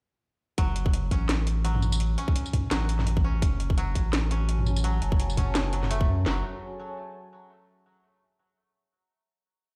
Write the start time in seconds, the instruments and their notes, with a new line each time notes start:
0.58 sub bass F#1, koto F#3, kick, closed hi-hat
0.76 closed hi-hat
0.86 kick
0.94 closed hi-hat
1.11 sub bass A1, koto C#4, kick, closed hi-hat
1.29 snare, closed hi-hat
1.47 closed hi-hat
1.64 koto F#3, closed hi-hat
1.75 mid tom
1.82 mid tom, tambourine
1.92 tambourine
2.00 closed hi-hat
2.18 koto C#4, closed hi-hat
2.28 kick
2.36 closed hi-hat
2.46 tambourine
2.53 kick, closed hi-hat, mid tom
2.71 sub bass A1, koto F#3, snare, closed hi-hat, tambourine
2.89 closed hi-hat
2.99 snare, mid tom
3.07 closed hi-hat
3.17 kick
3.24 koto C#4
3.42 sub bass F#1, analog synth pad F#4, kick, closed hi-hat
3.60 closed hi-hat
3.70 kick
3.76 koto F#3, analog synth pad C#5 G#5, closed hi-hat
3.90 analog synth pad A5
3.95 sub bass A1, kick, closed hi-hat
4.13 snare, closed hi-hat
4.31 koto C#4, closed hi-hat
4.49 closed hi-hat
4.59 mid tom
4.66 mid tom, tambourine
4.76 tambourine
4.84 koto F#3, closed hi-hat
5.02 sub bass F#1, closed hi-hat
5.12 kick
5.20 closed hi-hat
5.30 tambourine
5.37 koto C#4, kick, closed hi-hat, mid tom
5.55 snare, closed hi-hat, tambourine
5.73 koto F#3, closed hi-hat
5.83 snare, mid tom
5.90 koto A3, closed hi-hat
6.01 kick
6.08 sub bass F#2
6.26 sub bass F#1, koto F#3, analog synth pad F#4, snare
6.32 analog synth pad C#5
6.38 analog synth pad G#5
6.43 analog synth pad A5